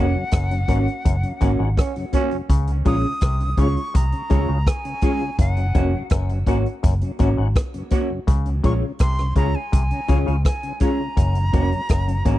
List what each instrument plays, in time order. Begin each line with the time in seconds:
Already playing: fingered electric bass F1, clean electric guitar A#3 C#4 F#4, reed electric piano C#4 F#4 A#4 C#5, flute F#5
0.15 tonewheel organ F#2 C#3
0.31 fingered electric bass F#1, clav F#2, kick, cross-stick, closed hi-hat
0.51 tonewheel organ F#2 C#3, closed hi-hat
0.68 fingered electric bass G#1, clav G#2, clean electric guitar A#3 C#4 F#4, tonewheel organ A#3 C#4 F#4, reed electric piano C#4 F#4 A#4 C#5, kick, closed hi-hat
0.88 closed hi-hat
1.05 fingered electric bass F#1, clav F#2, kick, closed hi-hat
1.23 tonewheel organ F#2 C#3, closed hi-hat
1.41 fingered electric bass G#1, clav G#2, clean electric guitar A#3 C#4 F#4, tonewheel organ A#3 C#4 F#4, reed electric piano C#4 F#4 A#4 C#5, kick, closed hi-hat
1.59 fingered electric bass G#1, clav G#2, tonewheel organ C#4 F#4
1.77 trombone C#4, kick, cross-stick, closed hi-hat
1.96 tonewheel organ F#2 C#3, closed hi-hat
2.13 clean electric guitar A#3 C#4 F#4, tonewheel organ A#3 C#4 F#4, reed electric piano C#4 F#4 A#4 C#5, trombone C#4, kick, closed hi-hat
2.31 tonewheel organ F#2 C#3, closed hi-hat
2.50 fingered electric bass C#2, clav C#3, kick, closed hi-hat
2.67 tonewheel organ C#3, closed hi-hat
2.85 fingered electric bass A#1, clav A#2, clean electric guitar G#3 C#4 F4, tonewheel organ G#3 C#4 F4, reed electric piano C#4 F4 G#4 C#5, flute D#6, kick, closed hi-hat
3.04 tonewheel organ C#3
3.21 fingered electric bass C2, clav C3, kick, cross-stick, closed hi-hat
3.40 tonewheel organ C#3, closed hi-hat
3.57 fingered electric bass C#2, clav C#3, tonewheel organ G#3 C#4 F4, clean electric guitar G#3 C#4 F4, reed electric piano C#4 F4 G#4 C#5, flute C#6, kick, closed hi-hat
3.77 closed hi-hat
3.94 fingered electric bass C2, clav C3, flute A#5, kick, closed hi-hat
4.12 tonewheel organ C#3, closed hi-hat
4.30 fingered electric bass C#2, clav C#3, tonewheel organ G#3 C#4 F4, clean electric guitar G#3 C#4 F4, reed electric piano C#4 F4 G#4 C#5, kick, closed hi-hat
4.48 fingered electric bass C#2, clav C#3, tonewheel organ C#4 F4
4.67 flute G#5, kick, cross-stick, closed hi-hat
4.85 tonewheel organ C#3, closed hi-hat
5.01 clean electric guitar G#3 C#4 F4, tonewheel organ G#3 C#4 F4, reed electric piano C#4 F4 G#4 C#5, kick, closed hi-hat
5.21 tonewheel organ C#3
5.39 fingered electric bass F#1, clav F#2, flute F#5, kick, closed hi-hat
5.57 tonewheel organ F#2 C#3, closed hi-hat
5.75 fingered electric bass F1, clav F2, clean electric guitar A#3 C#4 F#4, tonewheel organ A#3 C#4 F#4, reed electric piano C#4 F#4 A#4 C#5, kick, closed hi-hat
5.94 tonewheel organ F#2 C#3
6.10 fingered electric bass F#1, clav F#2, kick, cross-stick, closed hi-hat
6.29 tonewheel organ F#2 C#3, closed hi-hat
6.46 fingered electric bass G#1, clav G#2, clean electric guitar A#3 C#4 F#4, tonewheel organ A#3 C#4 F#4, reed electric piano C#4 F#4 A#4 C#5, kick, closed hi-hat
6.66 closed hi-hat
6.83 fingered electric bass F#1, clav F#2, kick, closed hi-hat
7.01 tonewheel organ F#2 C#3, closed hi-hat
7.19 fingered electric bass G#1, clav G#2, clean electric guitar A#3 C#4 F#4, tonewheel organ A#3 C#4 F#4, reed electric piano C#4 F#4 A#4 C#5, kick, closed hi-hat
7.37 fingered electric bass G#1, clav G#2, tonewheel organ C#4 F#4
7.56 kick, cross-stick, closed hi-hat
7.74 tonewheel organ F#2 C#3, closed hi-hat
7.90 clean electric guitar A#3 C#4 F#4, tonewheel organ A#3 C#4 F#4, reed electric piano C#4 F#4 A#4 C#5, kick, closed hi-hat
8.10 tonewheel organ F#2 C#3
8.27 fingered electric bass C#2, clav C#3, kick, closed hi-hat
8.46 tonewheel organ C#3, closed hi-hat
8.63 fingered electric bass A#1, clav A#2, clean electric guitar G#3 C#4 F4, tonewheel organ G#3 C#4 F4, reed electric piano C#4 F4 G#4 C#5, flute C#6, kick, closed hi-hat
8.83 tonewheel organ C#3
8.99 fingered electric bass C2, clav C3, flute C6, kick, cross-stick, closed hi-hat
9.18 tonewheel organ C#3, cross-stick, closed hi-hat
9.36 fingered electric bass C#2, clav C#3, clean electric guitar G#3 C#4 F4, tonewheel organ G#3 C#4 F4, reed electric piano C#4 F4 G#4 C#5, flute A#5, kick, closed hi-hat
9.55 flute G#5
9.72 fingered electric bass C2, clav C3, kick, closed hi-hat
9.91 tonewheel organ C#3, closed hi-hat
10.08 fingered electric bass C#2, clav C#3, clean electric guitar G#3 C#4 F4, tonewheel organ G#3 C#4 F4, reed electric piano C#4 F4 G#4 C#5, kick, closed hi-hat
10.26 fingered electric bass C#2, clav C#3, tonewheel organ C#4 F4, closed hi-hat
10.45 flute G#5, kick, cross-stick, closed hi-hat
10.63 tonewheel organ C#3, closed hi-hat
10.80 clean electric guitar G#3 C#4 F4, tonewheel organ G#3 C#4 F4, reed electric piano C#4 F4 G#4 C#5, flute A#5, kick, closed hi-hat
10.99 tonewheel organ C#3
11.17 fingered electric bass F#1, clav F#2, kick, closed hi-hat
11.35 tonewheel organ F#2 C#3, closed hi-hat
11.53 fingered electric bass F1, clav F2, clean electric guitar A#3 C#4 F#4, tonewheel organ A#3 C#4 F#4, reed electric piano C#4 F#4 A#4 C#5, kick, closed hi-hat
11.72 tonewheel organ F#2 C#3, closed hi-hat
11.89 fingered electric bass F#1, clav F#2, kick, cross-stick, closed hi-hat
12.08 tonewheel organ F#2 C#3, closed hi-hat
12.25 fingered electric bass G#1, clav G#2, clean electric guitar A#3 C#4 F#4, tonewheel organ A#3 C#4 F#4, reed electric piano C#4 F#4 A#4 C#5, kick, closed hi-hat